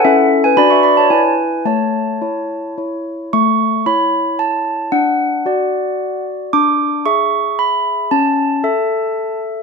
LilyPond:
\new Staff \with { instrumentName = "Handbells" } { \time 3/4 \key a \major \tempo 4 = 113 << { <a' e''>8. <b' gis''>16 <d'' b''>16 <e'' cis'''>16 <d'' b''>16 <cis'' a''>16 <b' gis''>4 | <cis'' a''>2 r4 | cis'''4 b''4 a''4 | fis''2~ fis''8 r8 |
d'''4 cis'''4 b''4 | a''2~ a''8 r8 | } \\ { <cis' e'>4 <d' fis' b'>4 e'4 | a4 <e' cis''>4 <e' cis''>4 | a4 <e' cis''>2 | d'4 <fis' d''>2 |
d'4 <gis' e''>2 | cis'4 <a' e''>2 | } >> }